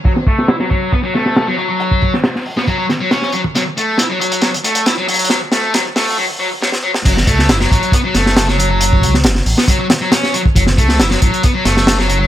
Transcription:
<<
  \new Staff \with { instrumentName = "Distorted electric guitar" } { \clef bass \time 4/4 \key fis \minor \tempo 4 = 137 fis16 r16 a8 e'16 fis16 fis8 b16 fis16 a8. fis16 fis16 fis16~ | fis8. r4 b16 fis16 fis16 r16 fis16 cis'8 fis16 r16 | fis16 r16 a8 e'16 fis16 fis8 fis16 r16 a8 e'16 fis16 fis8 | fis16 r16 a8 fis16 r16 a8 fis16 r16 fis16 r16 fis16 r16 fis16 r16 |
fis16 r16 a8 e'16 fis16 fis8 b16 fis16 a8. fis16 fis16 fis16~ | fis8. r4 b16 fis16 fis16 r16 fis16 cis'8 fis16 r16 | fis16 r16 a8 e'16 fis16 fis8 b16 fis16 a8. fis16 fis16 fis16 | }
  \new Staff \with { instrumentName = "Detuned saw bass" } { \clef bass \time 4/4 \key fis \minor r1 | r1 | r1 | r1 |
fis,,8 cis,8 fis,,8 a,,8 r8 fis,,4.~ | fis,,8 cis,8 fis,,8 a,,8 r2 | fis,,8 cis,8 fis,,8 a,,8 r8 fis,,4. | }
  \new DrumStaff \with { instrumentName = "Drums" } \drummode { \time 4/4 <hh bd>16 sn16 <hh bd>16 sn16 <hh sn>16 sn16 <hh bd>16 hh16 <hh bd>8 <hh sn>16 sn16 <hh sn>16 sn16 hh8 | hh16 bd16 <hh bd>16 sn16 <hh sn>16 sn16 hho16 sn16 <hh bd>8 <hh sn>8 <hh sn>16 sn16 hh16 bd16 | <hh sn>8 hh8 <hh sn>8 hh16 hh16 <hh sn>16 hh16 hh16 hh16 <hh sn>8 hh32 hh32 hh32 hh32 | <hh sn>8 <hh sn>8 <hh sn>8 <hho sn>8 r4 sn16 sn8 sn16 |
<cymc hh bd>16 sn16 <hh bd>16 sn16 <hh sn>16 sn16 <hh bd>16 hh16 <hh bd>8 <hh sn>16 sn16 <hh sn>16 sn16 hh8 | hh16 bd16 <hh bd>16 sn16 <hh sn>16 sn16 hho16 sn16 <hh bd>8 <hh sn>8 <hh sn>16 sn16 hh16 bd16 | <hh bd>16 sn16 <hh bd>16 sn16 <hh sn>16 sn16 <hh bd>16 hh16 <hh bd>8 <hh sn>16 sn16 <hh sn>16 sn16 hh8 | }
>>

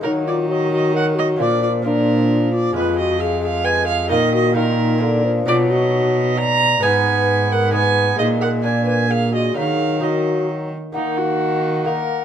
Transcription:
<<
  \new Staff \with { instrumentName = "Viola" } { \time 3/4 \key ees \minor \tempo 4 = 132 bes'8 d''8 ees''8 ees''8 ges''8 ees''8 | d''8 d''8 bes'4. d''8 | ces''8 ees''8 f''8 f''8 aes''8 f''8 | ees''8 ees''8 bes'4. r8 |
d''8 dis''4. bes''4 | aes''4. ges''8 aes''4 | ees''8 ges''8 aes''8 aes''8 f''8 ees''8 | f''4 ees''4 r4 |
ees'8 ges'4. bes'4 | }
  \new Staff \with { instrumentName = "Recorder" } { \time 3/4 \key ees \minor ees'8 f'8 ges'8 ges'8 bes'8 ges'8 | f'8 f'8 d'4. f'8 | f'8 ges'8 aes'8 aes'8 ces''8 aes'8 | bes'8 ges'8 ees'4. r8 |
f'8 fis'4. d''4 | ces''4. bes'8 ces''4 | aes'8 bes'8 d''8 ces''8 aes'8 ges'8 | aes'4 ges'4 r4 |
ges''2 ges''4 | }
  \new Staff \with { instrumentName = "Lute" } { \time 3/4 \key ees \minor <bes ees' ges'>2. | <bes d' f'>4 <bes d' f'>2 | <aes f'>2. | <bes ees' f'>4 <bes ees' f'>4 <bes d' f'>4 |
<b dis'>2. | <aes ces' ees'>2 <aes ces' ees'>4 | <aes bes ees'>4 <bes d'>2 | <bes ees'>4 <bes ees'>2 |
<bes ees'>2 <bes ees'>4 | }
  \new Staff \with { instrumentName = "Lute" } { \clef bass \time 3/4 \key ees \minor ees2. | bes,2. | f,2. | bes,2. |
b,2. | aes,2. | bes,2. | ees2~ ees8 r8 |
ees2. | }
  \new Staff \with { instrumentName = "Bassoon" } { \clef bass \time 3/4 \key ees \minor ges4 ges4 ges4 | f4 f2 | aes4 aes4 aes4 | ees4 ees4 d8 f8 |
fis2~ fis8 r8 | ces'2 ces'4 | aes4 bes4 bes8 aes8 | ges4 ges4. r8 |
bes2 bes4 | }
  \new Staff \with { instrumentName = "Cello" } { \clef bass \time 3/4 \key ees \minor ees2. | bes,2. | f,2. | bes,2. |
b,2. | aes,2. | bes,2. | ees2~ ees8 r8 |
ees2. | }
>>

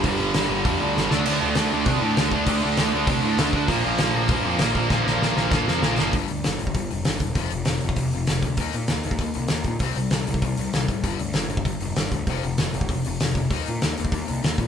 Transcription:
<<
  \new Staff \with { instrumentName = "Distorted electric guitar" } { \clef bass \time 4/4 \key d \dorian \tempo 4 = 196 <g, d g>8 <g, d g>8 <g, d g>8 <g, d g>8 <g, d g>8 <g, d g>8 <g, d g>8 <d a d'>8 | <d a d'>8 <d a d'>8 <d a d'>8 <d a d'>8 <d a d'>8 <d a d'>8 <d a d'>8 <d a d'>8 | <d a d'>8 <d a d'>8 <d a d'>8 <d a d'>8 <d a d'>8 <d a d'>8 <d a d'>8 <d a d'>8 | <bes, f bes>8 <bes, f bes>8 <bes, f bes>8 <bes, f bes>8 <bes, f bes>8 <bes, f bes>8 <bes, f bes>8 <bes, f bes>8 |
<bes, f bes>8 <bes, f bes>8 <bes, f bes>8 <bes, f bes>8 <bes, f bes>8 <bes, f bes>8 <bes, f bes>8 <bes, f bes>8 | r1 | r1 | r1 |
r1 | r1 | r1 | r1 | }
  \new Staff \with { instrumentName = "Distorted electric guitar" } { \clef bass \time 4/4 \key d \dorian <g, d g>2.~ <g, d g>8 <d a d'>8~ | <d a d'>2.~ <d a d'>8 <d a d'>8~ | <d a d'>2.~ <d a d'>8 r8 | <bes, f bes>1 |
<bes, f bes>1 | r1 | r1 | r1 |
r1 | r1 | r1 | r1 | }
  \new Staff \with { instrumentName = "Overdriven electric guitar" } { \clef bass \time 4/4 \key d \dorian <g, d g>8 <g, d g>8 <g, d g>8 <g, d g>8 <g, d g>8 <g, d g>8 <g, d g>8 <d a d'>8 | <d a d'>8 <d a d'>8 <d a d'>8 <d a d'>8 <d a d'>8 <d a d'>8 <d a d'>8 <d a d'>8 | <d a d'>8 <d a d'>8 <d a d'>8 <d a d'>8 <d a d'>8 <d a d'>8 <d a d'>8 <d a d'>8 | <bes, f bes>8 <bes, f bes>8 <bes, f bes>8 <bes, f bes>8 <bes, f bes>8 <bes, f bes>8 <bes, f bes>8 <bes, f bes>8 |
<bes, f bes>8 <bes, f bes>8 <bes, f bes>8 <bes, f bes>8 <bes, f bes>8 <bes, f bes>8 <bes, f bes>8 <bes, f bes>8 | <g, d g>8 <g, d>8 <g, d>8 <g, d>8 <g, d>8 <g, d>8 <g, d>8 <g, d>8 | <f, c f>8 <f, c>8 <f, c>8 <f, c>8 <f, c>8 <f, c>8 <f, c>8 <f, c>8 | <ees bes ees'>8 <ees bes>8 <ees bes>8 <ees bes>8 <ees bes>8 <ees bes>8 <ees bes>8 <ees bes>8 |
<c g c'>8 <c g>8 <c g>8 <c g>8 <c g>8 <c g>8 <c g>8 <c g>8 | <g, d g>8 <g, d>8 <g, d>8 <g, d>8 <g, d>8 <g, d>8 <g, d>8 <g, d>8 | <f, c f>8 <f, c>8 <f, c>8 <f, c>8 <f, c>8 <f, c>8 <f, c>8 <f, c>8 | <ees bes ees'>8 <ees bes>8 <ees bes>8 <ees bes>8 <ees bes>8 <ees bes>8 <ees bes>8 <ees bes>8 | }
  \new Staff \with { instrumentName = "Picked electric bass" } { \clef bass \time 4/4 \key d \dorian g,,8 g,,8 g,,8 g,,8 f,8 d,8 g,,8 d,8 | d,8 d,8 d,8 d,8 c8 a,8 d,8 d,8 | d,8 d,8 d,8 d,8 c8 a,8 d,8 d,8 | bes,,8 bes,,8 bes,,8 bes,,8 g,8 f,8 bes,,8 bes,,8 |
bes,,8 bes,,8 bes,,8 bes,,8 g,8 f,8 bes,,8 fis,,8 | g,,8 d,8 g,,8 g,,8 g,,8 f,,8 g,,8 e,,8 | f,,8 f,,8 f,,8 f,,8 f,,8 f,,8 f,,8 d,8 | ees,8 bes,8 ees,8 ees,8 ees,8 c,8 ees,8 bes,8 |
c,8 c,8 c,8 c,8 c,8 c,8 c,8 a,,8 | g,,8 d,8 g,,8 g,,8 g,,8 f,,8 g,,8 d,8 | f,,8 f,,8 f,,8 f,,8 f,,8 f,,8 f,,8 f,,8 | ees,8 bes,8 ees,8 ees,8 ees,8 c,8 ees,8 bes,8 | }
  \new DrumStaff \with { instrumentName = "Drums" } \drummode { \time 4/4 <hho bd>4 <hho sn>4 <hho bd>4 sn8 sn8 | <cymc hho>4 <hho sn>4 <hho bd>4 <hho sn>8 bd8 | <hho bd>4 <hho sn>4 <hho bd>4 <hho sn>8 bd8 | <hho bd>4 <hho sn>4 <hho bd>4 <hho sn>8 bd8 |
<bd sn>8 sn8 sn8 sn8 <bd sn>8 sn8 sn8 sn8 | <hho bd>8 hho8 <hho sn>8 hho16 bd16 <hho bd>8 hho8 <hho sn>8 <hho bd>8 | <hho bd>8 hho8 <hho sn>8 hho16 bd16 <hho bd>8 hho8 <hho sn>8 <hho bd>8 | <hho bd>8 hho8 <hho sn>8 hho16 bd16 <hho bd>8 hho8 <hho sn>8 <hho bd>8 |
<hho bd>8 hho8 <hho sn>8 hho16 bd16 <hho bd>8 hho8 <hho sn>8 <hho bd>8 | <hho bd>8 hho8 <hho sn>8 hho16 bd16 <hho bd>8 hho8 <hho sn>8 <hho bd>8 | <hho bd>8 hho8 <hho sn>8 hho16 bd16 <hho bd>8 hho8 <hho sn>8 <hho bd>8 | <hho bd>8 hho8 <hho sn>8 hho16 bd16 <hho bd>8 hho8 <hho sn>8 <hho bd>8 | }
>>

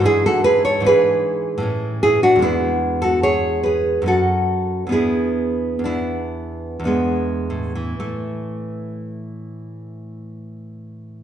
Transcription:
\new Staff \with { instrumentName = "Nylon-string guitar" } { \time 3/4 \key a \major \tempo 4 = 67 << { <e' gis'>16 <fis' a'>16 <gis' b'>16 <a' cis''>16 <gis' b'>4. <e' gis'>16 <d' fis'>16 | <b e'>8. <fis' a'>16 <gis' cis''>8 <gis' b'>8 <fis' a'>4 | <e' gis'>4 <b e'>4 <gis b>4 | <a, e a>2. | } \\ { <gis, e d'>4 <gis, e d'>4 <a, e cis'>4 | <e, gis d'>2 <fis, a cis'>4 | <e, b d'>4 <e, d'>4 <e, d'>4 | r2. | } >> }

